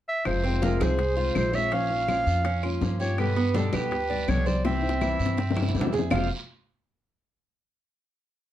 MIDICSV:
0, 0, Header, 1, 7, 480
1, 0, Start_track
1, 0, Key_signature, -4, "minor"
1, 0, Tempo, 366300
1, 337, Time_signature, 4, 2, 24, 8
1, 11167, End_track
2, 0, Start_track
2, 0, Title_t, "Clarinet"
2, 0, Program_c, 0, 71
2, 112, Note_on_c, 0, 76, 108
2, 328, Note_off_c, 0, 76, 0
2, 346, Note_on_c, 0, 72, 92
2, 788, Note_off_c, 0, 72, 0
2, 837, Note_on_c, 0, 70, 92
2, 1089, Note_on_c, 0, 72, 109
2, 1109, Note_off_c, 0, 70, 0
2, 1793, Note_off_c, 0, 72, 0
2, 1799, Note_on_c, 0, 72, 97
2, 2031, Note_on_c, 0, 76, 106
2, 2050, Note_off_c, 0, 72, 0
2, 2274, Note_on_c, 0, 77, 110
2, 2294, Note_off_c, 0, 76, 0
2, 3706, Note_off_c, 0, 77, 0
2, 3943, Note_on_c, 0, 73, 96
2, 4164, Note_off_c, 0, 73, 0
2, 4187, Note_on_c, 0, 71, 100
2, 4660, Note_on_c, 0, 69, 87
2, 4680, Note_off_c, 0, 71, 0
2, 4888, Note_off_c, 0, 69, 0
2, 4896, Note_on_c, 0, 71, 96
2, 5622, Note_on_c, 0, 73, 100
2, 5642, Note_off_c, 0, 71, 0
2, 5856, Note_on_c, 0, 74, 100
2, 5876, Note_off_c, 0, 73, 0
2, 6092, Note_off_c, 0, 74, 0
2, 6100, Note_on_c, 0, 76, 83
2, 7486, Note_off_c, 0, 76, 0
2, 8023, Note_on_c, 0, 77, 75
2, 8243, Note_off_c, 0, 77, 0
2, 11167, End_track
3, 0, Start_track
3, 0, Title_t, "Cuban tres"
3, 0, Program_c, 1, 25
3, 574, Note_on_c, 1, 60, 76
3, 808, Note_off_c, 1, 60, 0
3, 812, Note_on_c, 1, 65, 64
3, 1047, Note_off_c, 1, 65, 0
3, 1053, Note_on_c, 1, 68, 82
3, 1520, Note_off_c, 1, 68, 0
3, 1529, Note_on_c, 1, 65, 70
3, 1998, Note_off_c, 1, 65, 0
3, 2008, Note_on_c, 1, 73, 58
3, 2245, Note_off_c, 1, 73, 0
3, 2247, Note_on_c, 1, 61, 66
3, 2717, Note_off_c, 1, 61, 0
3, 2728, Note_on_c, 1, 65, 65
3, 3198, Note_off_c, 1, 65, 0
3, 3209, Note_on_c, 1, 61, 72
3, 3446, Note_off_c, 1, 61, 0
3, 3449, Note_on_c, 1, 65, 69
3, 3918, Note_off_c, 1, 65, 0
3, 3929, Note_on_c, 1, 67, 63
3, 4399, Note_off_c, 1, 67, 0
3, 4408, Note_on_c, 1, 59, 81
3, 4642, Note_on_c, 1, 62, 69
3, 4645, Note_off_c, 1, 59, 0
3, 4883, Note_off_c, 1, 62, 0
3, 4893, Note_on_c, 1, 67, 77
3, 5361, Note_off_c, 1, 67, 0
3, 5369, Note_on_c, 1, 62, 66
3, 5839, Note_off_c, 1, 62, 0
3, 5847, Note_on_c, 1, 72, 59
3, 6085, Note_off_c, 1, 72, 0
3, 6089, Note_on_c, 1, 60, 78
3, 6559, Note_off_c, 1, 60, 0
3, 6568, Note_on_c, 1, 64, 66
3, 7038, Note_off_c, 1, 64, 0
3, 7041, Note_on_c, 1, 60, 70
3, 7282, Note_off_c, 1, 60, 0
3, 7282, Note_on_c, 1, 64, 74
3, 7755, Note_off_c, 1, 64, 0
3, 7764, Note_on_c, 1, 68, 61
3, 7999, Note_on_c, 1, 65, 78
3, 8003, Note_off_c, 1, 68, 0
3, 8010, Note_on_c, 1, 72, 67
3, 8011, Note_on_c, 1, 77, 91
3, 8231, Note_off_c, 1, 65, 0
3, 8234, Note_off_c, 1, 72, 0
3, 8237, Note_off_c, 1, 77, 0
3, 11167, End_track
4, 0, Start_track
4, 0, Title_t, "Nylon-string guitar"
4, 0, Program_c, 2, 24
4, 331, Note_on_c, 2, 48, 71
4, 340, Note_on_c, 2, 53, 67
4, 349, Note_on_c, 2, 56, 72
4, 352, Note_on_c, 2, 60, 68
4, 359, Note_on_c, 2, 65, 75
4, 563, Note_off_c, 2, 65, 0
4, 564, Note_off_c, 2, 48, 0
4, 569, Note_off_c, 2, 53, 0
4, 573, Note_off_c, 2, 56, 0
4, 575, Note_off_c, 2, 60, 0
4, 578, Note_on_c, 2, 65, 47
4, 594, Note_on_c, 2, 60, 44
4, 600, Note_on_c, 2, 56, 33
4, 808, Note_off_c, 2, 65, 0
4, 812, Note_off_c, 2, 56, 0
4, 816, Note_off_c, 2, 60, 0
4, 817, Note_on_c, 2, 48, 79
4, 823, Note_on_c, 2, 53, 68
4, 827, Note_on_c, 2, 56, 67
4, 835, Note_on_c, 2, 60, 65
4, 838, Note_on_c, 2, 65, 81
4, 1284, Note_off_c, 2, 48, 0
4, 1286, Note_off_c, 2, 53, 0
4, 1286, Note_off_c, 2, 56, 0
4, 1293, Note_off_c, 2, 60, 0
4, 1293, Note_off_c, 2, 65, 0
4, 1527, Note_on_c, 2, 65, 43
4, 1545, Note_on_c, 2, 60, 48
4, 1556, Note_on_c, 2, 56, 34
4, 1762, Note_off_c, 2, 65, 0
4, 1762, Note_on_c, 2, 48, 66
4, 1763, Note_off_c, 2, 56, 0
4, 1764, Note_off_c, 2, 60, 0
4, 1773, Note_on_c, 2, 53, 66
4, 1778, Note_on_c, 2, 56, 67
4, 1779, Note_on_c, 2, 60, 75
4, 1786, Note_on_c, 2, 65, 75
4, 1988, Note_off_c, 2, 65, 0
4, 1999, Note_off_c, 2, 60, 0
4, 2000, Note_off_c, 2, 48, 0
4, 2004, Note_on_c, 2, 65, 46
4, 2005, Note_off_c, 2, 53, 0
4, 2008, Note_off_c, 2, 56, 0
4, 2015, Note_on_c, 2, 60, 40
4, 2033, Note_on_c, 2, 56, 39
4, 2241, Note_off_c, 2, 65, 0
4, 2246, Note_off_c, 2, 60, 0
4, 2247, Note_on_c, 2, 53, 71
4, 2250, Note_off_c, 2, 56, 0
4, 2255, Note_on_c, 2, 58, 69
4, 2265, Note_on_c, 2, 61, 86
4, 2272, Note_on_c, 2, 65, 71
4, 2473, Note_off_c, 2, 65, 0
4, 2483, Note_off_c, 2, 53, 0
4, 2486, Note_off_c, 2, 58, 0
4, 2486, Note_off_c, 2, 61, 0
4, 2488, Note_on_c, 2, 65, 40
4, 2512, Note_on_c, 2, 58, 31
4, 2718, Note_off_c, 2, 58, 0
4, 2723, Note_off_c, 2, 65, 0
4, 2725, Note_on_c, 2, 53, 69
4, 2734, Note_on_c, 2, 58, 66
4, 2741, Note_on_c, 2, 61, 72
4, 2749, Note_on_c, 2, 65, 69
4, 3194, Note_off_c, 2, 53, 0
4, 3199, Note_off_c, 2, 58, 0
4, 3201, Note_off_c, 2, 61, 0
4, 3204, Note_off_c, 2, 65, 0
4, 3448, Note_on_c, 2, 65, 52
4, 3465, Note_on_c, 2, 61, 46
4, 3473, Note_on_c, 2, 58, 40
4, 3681, Note_off_c, 2, 58, 0
4, 3683, Note_off_c, 2, 65, 0
4, 3687, Note_on_c, 2, 53, 62
4, 3692, Note_off_c, 2, 61, 0
4, 3697, Note_on_c, 2, 58, 70
4, 3707, Note_on_c, 2, 61, 80
4, 3715, Note_on_c, 2, 65, 74
4, 3917, Note_off_c, 2, 65, 0
4, 3922, Note_off_c, 2, 53, 0
4, 3927, Note_off_c, 2, 58, 0
4, 3933, Note_off_c, 2, 61, 0
4, 3933, Note_on_c, 2, 65, 47
4, 3946, Note_on_c, 2, 61, 36
4, 3958, Note_on_c, 2, 58, 35
4, 4166, Note_off_c, 2, 65, 0
4, 4169, Note_on_c, 2, 47, 83
4, 4172, Note_off_c, 2, 61, 0
4, 4175, Note_on_c, 2, 50, 82
4, 4178, Note_off_c, 2, 58, 0
4, 4184, Note_on_c, 2, 55, 76
4, 4188, Note_on_c, 2, 59, 82
4, 4195, Note_on_c, 2, 67, 86
4, 4396, Note_off_c, 2, 67, 0
4, 4404, Note_off_c, 2, 47, 0
4, 4407, Note_off_c, 2, 50, 0
4, 4408, Note_off_c, 2, 59, 0
4, 4411, Note_off_c, 2, 55, 0
4, 4412, Note_on_c, 2, 67, 47
4, 4424, Note_on_c, 2, 59, 38
4, 4436, Note_on_c, 2, 55, 34
4, 4645, Note_off_c, 2, 67, 0
4, 4646, Note_off_c, 2, 55, 0
4, 4651, Note_off_c, 2, 59, 0
4, 4651, Note_on_c, 2, 47, 74
4, 4655, Note_on_c, 2, 50, 72
4, 4662, Note_on_c, 2, 55, 70
4, 4668, Note_on_c, 2, 59, 72
4, 4675, Note_on_c, 2, 67, 73
4, 5118, Note_off_c, 2, 47, 0
4, 5123, Note_off_c, 2, 50, 0
4, 5124, Note_off_c, 2, 55, 0
4, 5128, Note_off_c, 2, 59, 0
4, 5137, Note_off_c, 2, 67, 0
4, 5374, Note_on_c, 2, 67, 53
4, 5387, Note_on_c, 2, 59, 53
4, 5399, Note_on_c, 2, 55, 49
4, 5606, Note_off_c, 2, 55, 0
4, 5606, Note_off_c, 2, 67, 0
4, 5608, Note_off_c, 2, 59, 0
4, 5608, Note_on_c, 2, 47, 70
4, 5614, Note_on_c, 2, 50, 70
4, 5622, Note_on_c, 2, 55, 82
4, 5624, Note_on_c, 2, 59, 72
4, 5630, Note_on_c, 2, 67, 81
4, 5836, Note_off_c, 2, 67, 0
4, 5843, Note_off_c, 2, 47, 0
4, 5847, Note_off_c, 2, 50, 0
4, 5850, Note_off_c, 2, 55, 0
4, 5851, Note_off_c, 2, 59, 0
4, 5851, Note_on_c, 2, 67, 44
4, 5868, Note_on_c, 2, 59, 40
4, 5877, Note_on_c, 2, 55, 41
4, 6085, Note_off_c, 2, 67, 0
4, 6091, Note_off_c, 2, 55, 0
4, 6093, Note_off_c, 2, 59, 0
4, 6094, Note_on_c, 2, 48, 68
4, 6099, Note_on_c, 2, 52, 68
4, 6107, Note_on_c, 2, 55, 77
4, 6110, Note_on_c, 2, 60, 78
4, 6120, Note_on_c, 2, 64, 85
4, 6305, Note_off_c, 2, 64, 0
4, 6321, Note_off_c, 2, 60, 0
4, 6321, Note_on_c, 2, 64, 41
4, 6326, Note_off_c, 2, 48, 0
4, 6329, Note_off_c, 2, 52, 0
4, 6333, Note_off_c, 2, 55, 0
4, 6337, Note_on_c, 2, 60, 38
4, 6347, Note_on_c, 2, 55, 38
4, 6560, Note_off_c, 2, 64, 0
4, 6561, Note_on_c, 2, 48, 73
4, 6562, Note_off_c, 2, 55, 0
4, 6568, Note_off_c, 2, 60, 0
4, 6573, Note_on_c, 2, 52, 78
4, 6578, Note_on_c, 2, 55, 75
4, 6586, Note_on_c, 2, 60, 73
4, 6591, Note_on_c, 2, 64, 83
4, 7039, Note_off_c, 2, 48, 0
4, 7046, Note_off_c, 2, 52, 0
4, 7048, Note_off_c, 2, 55, 0
4, 7052, Note_off_c, 2, 60, 0
4, 7055, Note_off_c, 2, 64, 0
4, 7291, Note_on_c, 2, 64, 45
4, 7307, Note_on_c, 2, 60, 46
4, 7317, Note_on_c, 2, 55, 42
4, 7524, Note_off_c, 2, 64, 0
4, 7532, Note_on_c, 2, 48, 63
4, 7533, Note_off_c, 2, 60, 0
4, 7537, Note_off_c, 2, 55, 0
4, 7543, Note_on_c, 2, 52, 74
4, 7551, Note_on_c, 2, 55, 73
4, 7555, Note_on_c, 2, 60, 71
4, 7566, Note_on_c, 2, 64, 77
4, 7762, Note_off_c, 2, 64, 0
4, 7765, Note_off_c, 2, 48, 0
4, 7770, Note_off_c, 2, 52, 0
4, 7774, Note_off_c, 2, 55, 0
4, 7776, Note_off_c, 2, 60, 0
4, 7778, Note_on_c, 2, 64, 47
4, 7790, Note_on_c, 2, 60, 37
4, 7801, Note_on_c, 2, 55, 36
4, 8008, Note_off_c, 2, 64, 0
4, 8012, Note_on_c, 2, 41, 74
4, 8013, Note_on_c, 2, 48, 75
4, 8014, Note_off_c, 2, 60, 0
4, 8017, Note_off_c, 2, 55, 0
4, 8020, Note_on_c, 2, 53, 74
4, 8022, Note_on_c, 2, 56, 73
4, 8033, Note_on_c, 2, 60, 84
4, 8034, Note_on_c, 2, 65, 81
4, 8207, Note_off_c, 2, 41, 0
4, 8207, Note_off_c, 2, 48, 0
4, 8210, Note_off_c, 2, 53, 0
4, 8211, Note_off_c, 2, 56, 0
4, 8217, Note_off_c, 2, 60, 0
4, 8217, Note_off_c, 2, 65, 0
4, 11167, End_track
5, 0, Start_track
5, 0, Title_t, "Upright bass"
5, 0, Program_c, 3, 32
5, 341, Note_on_c, 3, 29, 91
5, 1008, Note_off_c, 3, 29, 0
5, 1057, Note_on_c, 3, 36, 93
5, 1727, Note_off_c, 3, 36, 0
5, 1779, Note_on_c, 3, 34, 80
5, 2902, Note_off_c, 3, 34, 0
5, 2968, Note_on_c, 3, 41, 83
5, 3642, Note_off_c, 3, 41, 0
5, 3693, Note_on_c, 3, 43, 83
5, 4819, Note_off_c, 3, 43, 0
5, 4886, Note_on_c, 3, 38, 86
5, 5561, Note_off_c, 3, 38, 0
5, 5607, Note_on_c, 3, 36, 86
5, 6736, Note_off_c, 3, 36, 0
5, 6808, Note_on_c, 3, 43, 89
5, 7482, Note_off_c, 3, 43, 0
5, 7526, Note_on_c, 3, 41, 85
5, 7955, Note_off_c, 3, 41, 0
5, 8010, Note_on_c, 3, 29, 86
5, 8237, Note_off_c, 3, 29, 0
5, 11167, End_track
6, 0, Start_track
6, 0, Title_t, "Muted nylon-string guitar strokes"
6, 1299, Note_on_c, 9, 29, 53
6, 1430, Note_off_c, 9, 29, 0
6, 3210, Note_on_c, 9, 29, 56
6, 3341, Note_off_c, 9, 29, 0
6, 5134, Note_on_c, 9, 29, 59
6, 5265, Note_off_c, 9, 29, 0
6, 7056, Note_on_c, 9, 29, 62
6, 7187, Note_off_c, 9, 29, 0
6, 11167, End_track
7, 0, Start_track
7, 0, Title_t, "Drums"
7, 331, Note_on_c, 9, 60, 66
7, 332, Note_on_c, 9, 74, 66
7, 333, Note_on_c, 9, 75, 72
7, 342, Note_on_c, 9, 63, 33
7, 462, Note_off_c, 9, 60, 0
7, 463, Note_off_c, 9, 74, 0
7, 464, Note_off_c, 9, 75, 0
7, 473, Note_off_c, 9, 63, 0
7, 577, Note_on_c, 9, 60, 32
7, 583, Note_on_c, 9, 63, 33
7, 708, Note_off_c, 9, 60, 0
7, 714, Note_off_c, 9, 63, 0
7, 813, Note_on_c, 9, 60, 57
7, 815, Note_on_c, 9, 73, 65
7, 821, Note_on_c, 9, 63, 99
7, 944, Note_off_c, 9, 60, 0
7, 946, Note_off_c, 9, 73, 0
7, 952, Note_off_c, 9, 63, 0
7, 1053, Note_on_c, 9, 60, 33
7, 1055, Note_on_c, 9, 75, 56
7, 1056, Note_on_c, 9, 73, 76
7, 1062, Note_on_c, 9, 63, 94
7, 1184, Note_off_c, 9, 60, 0
7, 1186, Note_off_c, 9, 75, 0
7, 1187, Note_off_c, 9, 73, 0
7, 1193, Note_off_c, 9, 63, 0
7, 1294, Note_on_c, 9, 60, 66
7, 1299, Note_on_c, 9, 74, 71
7, 1301, Note_on_c, 9, 63, 33
7, 1425, Note_off_c, 9, 60, 0
7, 1430, Note_off_c, 9, 74, 0
7, 1432, Note_off_c, 9, 63, 0
7, 1531, Note_on_c, 9, 60, 35
7, 1541, Note_on_c, 9, 63, 30
7, 1663, Note_off_c, 9, 60, 0
7, 1672, Note_off_c, 9, 63, 0
7, 1772, Note_on_c, 9, 75, 70
7, 1775, Note_on_c, 9, 73, 65
7, 1776, Note_on_c, 9, 60, 34
7, 1776, Note_on_c, 9, 61, 79
7, 1780, Note_on_c, 9, 63, 94
7, 1903, Note_off_c, 9, 75, 0
7, 1906, Note_off_c, 9, 73, 0
7, 1907, Note_off_c, 9, 60, 0
7, 1907, Note_off_c, 9, 61, 0
7, 1911, Note_off_c, 9, 63, 0
7, 2014, Note_on_c, 9, 63, 69
7, 2014, Note_on_c, 9, 73, 75
7, 2145, Note_off_c, 9, 63, 0
7, 2145, Note_off_c, 9, 73, 0
7, 2251, Note_on_c, 9, 63, 34
7, 2254, Note_on_c, 9, 60, 63
7, 2258, Note_on_c, 9, 74, 61
7, 2382, Note_off_c, 9, 63, 0
7, 2385, Note_off_c, 9, 60, 0
7, 2389, Note_off_c, 9, 74, 0
7, 2496, Note_on_c, 9, 60, 33
7, 2497, Note_on_c, 9, 63, 35
7, 2627, Note_off_c, 9, 60, 0
7, 2628, Note_off_c, 9, 63, 0
7, 2731, Note_on_c, 9, 60, 55
7, 2733, Note_on_c, 9, 75, 61
7, 2734, Note_on_c, 9, 63, 60
7, 2737, Note_on_c, 9, 73, 62
7, 2862, Note_off_c, 9, 60, 0
7, 2864, Note_off_c, 9, 75, 0
7, 2865, Note_off_c, 9, 63, 0
7, 2868, Note_off_c, 9, 73, 0
7, 2971, Note_on_c, 9, 73, 77
7, 2972, Note_on_c, 9, 60, 33
7, 2973, Note_on_c, 9, 63, 31
7, 3102, Note_off_c, 9, 73, 0
7, 3103, Note_off_c, 9, 60, 0
7, 3104, Note_off_c, 9, 63, 0
7, 3208, Note_on_c, 9, 60, 76
7, 3212, Note_on_c, 9, 63, 32
7, 3218, Note_on_c, 9, 74, 69
7, 3339, Note_off_c, 9, 60, 0
7, 3343, Note_off_c, 9, 63, 0
7, 3350, Note_off_c, 9, 74, 0
7, 3450, Note_on_c, 9, 75, 59
7, 3452, Note_on_c, 9, 63, 34
7, 3454, Note_on_c, 9, 60, 31
7, 3581, Note_off_c, 9, 75, 0
7, 3583, Note_off_c, 9, 63, 0
7, 3586, Note_off_c, 9, 60, 0
7, 3686, Note_on_c, 9, 63, 92
7, 3692, Note_on_c, 9, 73, 67
7, 3693, Note_on_c, 9, 60, 33
7, 3693, Note_on_c, 9, 61, 82
7, 3817, Note_off_c, 9, 63, 0
7, 3823, Note_off_c, 9, 73, 0
7, 3824, Note_off_c, 9, 60, 0
7, 3824, Note_off_c, 9, 61, 0
7, 3934, Note_on_c, 9, 73, 74
7, 4065, Note_off_c, 9, 73, 0
7, 4166, Note_on_c, 9, 63, 35
7, 4169, Note_on_c, 9, 74, 64
7, 4171, Note_on_c, 9, 60, 64
7, 4171, Note_on_c, 9, 75, 75
7, 4297, Note_off_c, 9, 63, 0
7, 4300, Note_off_c, 9, 74, 0
7, 4302, Note_off_c, 9, 60, 0
7, 4302, Note_off_c, 9, 75, 0
7, 4413, Note_on_c, 9, 63, 34
7, 4415, Note_on_c, 9, 60, 32
7, 4544, Note_off_c, 9, 63, 0
7, 4546, Note_off_c, 9, 60, 0
7, 4646, Note_on_c, 9, 63, 93
7, 4649, Note_on_c, 9, 73, 69
7, 4661, Note_on_c, 9, 60, 53
7, 4777, Note_off_c, 9, 63, 0
7, 4780, Note_off_c, 9, 73, 0
7, 4792, Note_off_c, 9, 60, 0
7, 4883, Note_on_c, 9, 63, 101
7, 4889, Note_on_c, 9, 73, 79
7, 4896, Note_on_c, 9, 60, 31
7, 4896, Note_on_c, 9, 75, 64
7, 5015, Note_off_c, 9, 63, 0
7, 5020, Note_off_c, 9, 73, 0
7, 5027, Note_off_c, 9, 60, 0
7, 5027, Note_off_c, 9, 75, 0
7, 5125, Note_on_c, 9, 74, 72
7, 5127, Note_on_c, 9, 63, 32
7, 5137, Note_on_c, 9, 60, 73
7, 5256, Note_off_c, 9, 74, 0
7, 5259, Note_off_c, 9, 63, 0
7, 5268, Note_off_c, 9, 60, 0
7, 5372, Note_on_c, 9, 63, 32
7, 5374, Note_on_c, 9, 60, 29
7, 5503, Note_off_c, 9, 63, 0
7, 5506, Note_off_c, 9, 60, 0
7, 5606, Note_on_c, 9, 73, 67
7, 5612, Note_on_c, 9, 60, 35
7, 5612, Note_on_c, 9, 61, 80
7, 5613, Note_on_c, 9, 75, 68
7, 5614, Note_on_c, 9, 63, 85
7, 5737, Note_off_c, 9, 73, 0
7, 5743, Note_off_c, 9, 60, 0
7, 5743, Note_off_c, 9, 61, 0
7, 5744, Note_off_c, 9, 75, 0
7, 5745, Note_off_c, 9, 63, 0
7, 5842, Note_on_c, 9, 73, 70
7, 5856, Note_on_c, 9, 63, 75
7, 5973, Note_off_c, 9, 73, 0
7, 5987, Note_off_c, 9, 63, 0
7, 6087, Note_on_c, 9, 74, 67
7, 6089, Note_on_c, 9, 60, 97
7, 6218, Note_off_c, 9, 74, 0
7, 6220, Note_off_c, 9, 60, 0
7, 6335, Note_on_c, 9, 63, 33
7, 6410, Note_on_c, 9, 60, 72
7, 6466, Note_off_c, 9, 63, 0
7, 6541, Note_off_c, 9, 60, 0
7, 6566, Note_on_c, 9, 73, 70
7, 6570, Note_on_c, 9, 60, 76
7, 6572, Note_on_c, 9, 75, 61
7, 6574, Note_on_c, 9, 63, 61
7, 6697, Note_off_c, 9, 73, 0
7, 6701, Note_off_c, 9, 60, 0
7, 6703, Note_off_c, 9, 75, 0
7, 6705, Note_off_c, 9, 63, 0
7, 6806, Note_on_c, 9, 73, 75
7, 6811, Note_on_c, 9, 63, 38
7, 6892, Note_on_c, 9, 61, 83
7, 6937, Note_off_c, 9, 73, 0
7, 6942, Note_off_c, 9, 63, 0
7, 7023, Note_off_c, 9, 61, 0
7, 7049, Note_on_c, 9, 74, 76
7, 7053, Note_on_c, 9, 61, 98
7, 7058, Note_on_c, 9, 63, 34
7, 7180, Note_off_c, 9, 74, 0
7, 7185, Note_off_c, 9, 61, 0
7, 7189, Note_off_c, 9, 63, 0
7, 7214, Note_on_c, 9, 61, 100
7, 7293, Note_on_c, 9, 63, 88
7, 7294, Note_on_c, 9, 75, 58
7, 7345, Note_off_c, 9, 61, 0
7, 7370, Note_on_c, 9, 61, 96
7, 7424, Note_off_c, 9, 63, 0
7, 7425, Note_off_c, 9, 75, 0
7, 7453, Note_on_c, 9, 64, 72
7, 7501, Note_off_c, 9, 61, 0
7, 7528, Note_on_c, 9, 61, 74
7, 7533, Note_on_c, 9, 73, 69
7, 7584, Note_off_c, 9, 64, 0
7, 7615, Note_on_c, 9, 64, 98
7, 7659, Note_off_c, 9, 61, 0
7, 7664, Note_off_c, 9, 73, 0
7, 7692, Note_on_c, 9, 61, 69
7, 7746, Note_off_c, 9, 64, 0
7, 7770, Note_on_c, 9, 73, 68
7, 7780, Note_on_c, 9, 64, 75
7, 7823, Note_off_c, 9, 61, 0
7, 7849, Note_on_c, 9, 61, 92
7, 7901, Note_off_c, 9, 73, 0
7, 7911, Note_off_c, 9, 64, 0
7, 7980, Note_off_c, 9, 61, 0
7, 8006, Note_on_c, 9, 61, 106
7, 8008, Note_on_c, 9, 75, 105
7, 8010, Note_on_c, 9, 74, 81
7, 8023, Note_on_c, 9, 64, 107
7, 8137, Note_off_c, 9, 61, 0
7, 8139, Note_off_c, 9, 75, 0
7, 8141, Note_off_c, 9, 74, 0
7, 8154, Note_off_c, 9, 64, 0
7, 11167, End_track
0, 0, End_of_file